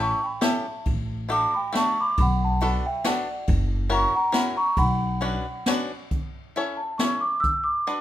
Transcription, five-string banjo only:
0.00 0.20 C#4 medium
0.00 0.20 E4 medium
0.00 0.20 G4 soft
0.00 0.20 A4 medium
0.41 0.65 C#4 medium
0.41 0.65 E4 medium
0.41 0.65 G4 medium
0.41 0.65 A4 medium
1.29 1.53 A3 medium
1.29 1.53 D4 medium
1.29 1.53 F#4 medium
1.29 1.53 A4 medium
1.73 1.97 A3 medium
1.73 1.97 D4 medium
1.73 1.97 F#4 medium
1.73 1.97 A4 medium
2.62 2.85 B3 medium
2.62 2.85 D4 medium
2.62 2.84 F#4 medium
2.62 2.85 A4 medium
3.04 3.28 B3 medium
3.04 3.28 D4 medium
3.04 3.28 F#4 medium
3.04 3.28 A4 medium
3.90 4.13 C#4 medium
3.90 4.13 E4 medium
3.90 4.13 F#4 medium
3.90 4.13 A#4 medium
4.32 4.56 C#4 medium
4.32 4.56 E4 medium
4.32 4.56 F#4 medium
4.32 4.56 A#4 medium
5.21 5.45 C#4 medium
5.21 5.45 D4 medium
5.21 5.45 F#4 medium
5.21 5.45 B4 medium
5.67 5.91 C#4 medium
5.67 5.91 D4 medium
5.67 5.91 F#4 medium
5.67 5.91 B4 medium
6.56 6.80 C#4 medium
6.56 6.79 E4 soft
6.56 6.80 A4 soft
6.56 6.80 C#5 medium
7.00 7.23 C#4 medium
7.00 7.23 E4 soft
7.00 7.23 A4 medium
7.00 7.23 C#5 medium
7.87 8.01 D4 medium
7.87 8.01 F#4 medium
7.87 8.01 B4 medium
7.87 8.01 D5 medium

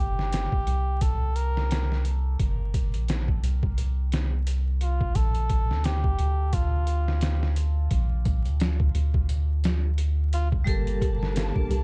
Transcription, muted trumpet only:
0.00 1.03 G4 loud
1.02 1.38 A4 medium
1.36 2.05 A#4 loud
4.83 5.17 F4 medium
5.16 5.86 A4 loud
5.85 6.55 G4 loud
6.54 7.57 F4 medium
10.34 10.49 F4 loud

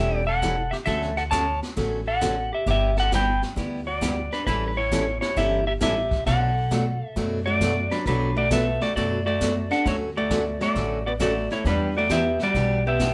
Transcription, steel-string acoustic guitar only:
0.00 0.20 E3 medium
0.00 0.20 G3 medium
0.00 0.20 C#4 medium
0.00 0.20 E4 medium
0.00 0.20 A4 medium
0.42 0.54 E3 medium
0.42 0.54 G3 medium
0.42 0.55 C#4 medium
0.42 0.55 E4 medium
0.42 0.55 A4 medium
0.86 1.09 D3 medium
0.86 1.09 F#3 medium
0.86 1.10 A3 medium
0.86 1.10 C#4 medium
0.86 1.10 F#4 medium
1.31 1.44 D3 medium
1.31 1.44 F#3 medium
1.31 1.44 A3 medium
1.31 1.44 C#4 medium
1.31 1.44 F#4 medium
1.77 1.99 D3 medium
1.77 1.99 F#3 medium
1.77 2.00 A3 medium
1.77 2.00 C#4 medium
1.77 2.00 F#4 medium
2.21 2.34 D3 medium
2.21 2.34 F#3 medium
2.21 2.34 A3 medium
2.21 2.34 C#4 medium
2.21 2.34 F#4 medium
2.67 2.89 G3 medium
2.67 2.90 B3 medium
2.67 2.90 E4 medium
2.67 2.90 G4 medium
3.12 3.24 G3 medium
3.12 3.24 B3 medium
3.12 3.25 E4 medium
3.12 3.25 G4 medium
3.56 3.79 G3 medium
3.56 3.80 B3 medium
3.56 3.80 E4 medium
3.56 3.80 G4 medium
4.01 4.13 G3 medium
4.01 4.14 B3 medium
4.01 4.14 E4 medium
4.01 4.14 G4 medium
4.47 4.70 E3 medium
4.47 4.70 G3 medium
4.47 4.70 C#4 medium
4.47 4.70 E4 medium
4.47 4.70 A4 medium
4.92 5.03 E3 medium
4.92 5.04 G3 medium
4.92 5.04 C#4 medium
4.92 5.04 E4 medium
4.92 5.04 A4 medium
5.36 5.59 E3 medium
5.36 5.59 G3 medium
5.36 5.59 C#4 medium
5.36 5.59 E4 medium
5.36 5.60 A4 medium
5.81 5.93 E3 medium
5.81 5.93 G3 medium
5.81 5.93 C#4 medium
5.81 5.93 E4 medium
5.81 5.93 A4 medium
6.26 6.49 B2 medium
6.26 6.49 F#3 medium
6.26 6.49 A3 medium
6.26 6.49 D4 medium
6.26 6.49 F#4 medium
6.71 6.83 B2 medium
6.71 6.83 F#3 medium
6.71 6.83 A3 medium
6.71 6.83 D4 medium
6.71 6.83 F#4 medium
7.16 7.38 B2 medium
7.16 7.39 F#3 medium
7.16 7.39 A3 medium
7.16 7.39 D4 medium
7.16 7.39 F#4 medium
7.61 7.73 B2 medium
7.61 7.73 F#3 medium
7.61 7.73 A3 medium
7.61 7.73 D4 medium
7.61 7.74 F#4 medium
8.07 8.29 B2 medium
8.07 8.29 F#3 medium
8.07 8.29 A3 medium
8.07 8.29 D4 medium
8.07 8.29 F#4 medium
8.51 8.62 B2 medium
8.51 8.63 F#3 medium
8.51 8.63 A3 medium
8.51 8.63 D4 medium
8.51 8.63 F#4 medium
8.97 9.19 B2 medium
8.97 9.19 F#3 medium
8.97 9.19 A3 medium
8.97 9.19 D4 medium
8.97 9.19 F#4 medium
9.41 9.52 B2 medium
9.41 9.53 F#3 medium
9.41 9.53 A3 medium
9.41 9.53 D4 medium
9.41 9.53 F#4 medium
9.87 10.08 D3 medium
9.87 10.08 F#3 medium
9.87 10.09 A3 medium
9.87 10.08 C#4 medium
9.87 10.09 F#4 medium
10.31 10.42 D3 medium
10.31 10.42 F#3 medium
10.31 10.43 A3 medium
10.31 10.43 C#4 medium
10.31 10.43 F#4 medium
10.76 10.98 D3 medium
10.76 10.98 F#3 medium
10.76 10.98 A3 medium
10.76 10.98 C#4 medium
10.76 10.98 F#4 medium
11.20 11.32 D3 medium
11.20 11.32 F#3 medium
11.20 11.32 A3 medium
11.20 11.32 C#4 medium
11.20 11.32 F#4 medium
11.66 11.88 E3 medium
11.66 11.88 B3 soft
11.66 11.88 D4 medium
11.66 11.88 G4 medium
12.11 12.22 E3 medium
12.11 12.22 B3 medium
12.11 12.22 D4 medium
12.11 12.23 G4 medium
12.55 12.77 E3 medium
12.55 12.77 B3 medium
12.55 12.78 D4 medium
12.55 12.78 G4 medium
13.01 13.12 E3 medium
13.01 13.12 B3 medium
13.01 13.12 D4 medium
13.01 13.12 G4 medium

